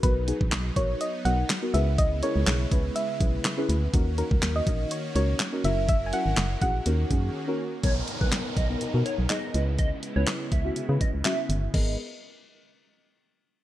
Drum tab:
CC |----------------|----------------|----------------|----------------|
HH |x-x-x-x-x-x-x-x-|x-x-x-x-x-x-x-x-|x-x-x-x-x-x-x-x-|x-x-x-x-x-x-----|
CP |----x-------x---|----x-------x---|----x-------x---|----x-----------|
SD |----o-------o---|----o-------o---|----o-------o---|----o-----------|
BD |o--o--o---------|o-----o---o-----|o--o--o---------|o-----o---o-----|

CC |----------------|----------------|x---------------|
HH |x-x-x-x-x-x-x-x-|x-x-x-x-x-x-x-x-|----------------|
CP |----x-------x---|----x-------x---|----------------|
SD |----o-------o---|----o-------o---|----------------|
BD |o--o--o---------|o-----o---o-----|o---------------|